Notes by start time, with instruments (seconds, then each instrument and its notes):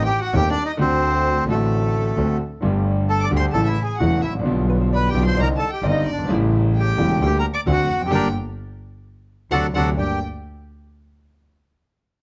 0.05 bandoneon G4, violin G5
0.21 bandoneon F#4, violin F#5
0.33 grand piano D#1 D#2 D#3 A3 C4 G4, double bass D#2, bandoneon G4, violin G5
0.50 bandoneon D4, violin D5
0.65 bandoneon D#4, violin D#5
0.77 grand piano D2 D3 A3 C4 F#4, double bass D2, bandoneon C4
0.84 violin C5
1.46 double bass A1, grand piano A1 A2 D3 A3 C4, violin A4
1.51 bandoneon A3, grand piano F#4
2.17 double bass D2, grand piano D2 D3 A3 C4 F#4
2.61 grand piano G1 G2 D3 G3 A3 G4, double bass G1
3.09 bandoneon A4, violin A5
3.21 bandoneon D5, violin D6
3.31 grand piano D2 D3 G3 A3 G4, double bass D2
3.36 bandoneon C5, violin C6
3.52 double bass A1, grand piano A1 A2 C#3 E3 A3 E4, bandoneon A4, violin A5
3.66 bandoneon E4, violin E5
3.83 bandoneon G#4, violin G#5
3.98 grand piano E1 E2 C#3 E3 A3 E4, double bass E1, bandoneon F#4, violin F#5
4.22 double bass A1, bandoneon E4, violin E5
4.29 grand piano G#1
4.34 grand piano A1
4.39 grand piano A#1 D3
4.44 grand piano B1 B2 G3 B3 F4, double bass B1
4.70 hollow-body jazz guitar B4
4.81 hollow-body jazz guitar C5
4.93 bandoneon B4, hollow-body jazz guitar D5, violin B5
5.09 bandoneon G4, violin G5
5.13 double bass B1, grand piano B1 B2 D3 G3 B3 F4
5.25 bandoneon C5, violin C6
5.37 double bass C2, grand piano C2 C3 D3 G3 C4 D#4, hollow-body jazz guitar D#5, violin A#5
5.42 bandoneon A#4
5.57 bandoneon A4, violin A5
5.70 bandoneon G4, violin G5
5.82 double bass G1, grand piano G1 G2 D3 G3 C4 D#4, hollow-body jazz guitar D5, violin D#5
5.90 bandoneon D#4
6.06 double bass G1, violin D5
6.12 grand piano F#1, bandoneon D4
6.19 grand piano G1
6.25 grand piano G#1 C#3, double bass A1
6.29 grand piano A1 A2 G3 A3 E4
6.76 bandoneon G4, violin G5
6.98 double bass E1, grand piano E1 E2 C#3 G3 A3 E4
7.20 double bass D2, grand piano D2 D3 G3 A#3 G4, violin G5
7.26 bandoneon G4
7.39 bandoneon A#4, violin A#5
7.54 bandoneon D5, violin D6
7.66 double bass D2, grand piano D2 D3 A3 C4 F#4, violin F#5
7.72 bandoneon F#4
7.89 double bass F1
7.95 grand piano E2
8.01 grand piano F2, violin G5
8.06 grand piano F#2, bandoneon G4
8.10 double bass G1, grand piano A#2 D3 G3, bandoneon D4 G4 A#4, hollow-body jazz guitar A#4 D5 G5, violin G5
9.51 double bass D2, grand piano C3 D3 F#3, bandoneon D4 F#4 A4, hollow-body jazz guitar C5 D5 F#5, violin F#5
9.74 double bass D2, grand piano C3 D3 F#3, bandoneon D4 F#4 A4, hollow-body jazz guitar C5 D5 F#5, violin F#5
9.97 double bass G1, grand piano G2 A#3 D4 G4, bandoneon G4, hollow-body jazz guitar D5, violin G5